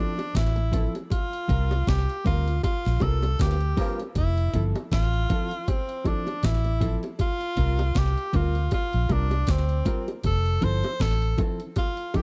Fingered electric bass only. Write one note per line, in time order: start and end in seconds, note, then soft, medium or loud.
0.35 0.86 A1 medium
1.50 1.82 C2 loud
1.88 2.06 C2 loud
2.26 2.59 D2 medium
2.86 3.00 A#1 loud
3.02 3.34 C2 loud
3.40 3.73 D2 medium
4.16 4.49 F1 loud
4.54 4.72 G1 medium
4.92 5.25 A1 loud
6.44 6.95 A1 medium
7.58 7.91 C2 medium
7.96 8.15 C2 loud
8.34 8.67 D2 medium
8.94 9.08 A#1 medium
9.10 9.43 C2 loud
9.48 9.81 D2 medium
10.25 10.57 F1 loud
10.62 10.81 G1 loud
11.01 11.33 A1 loud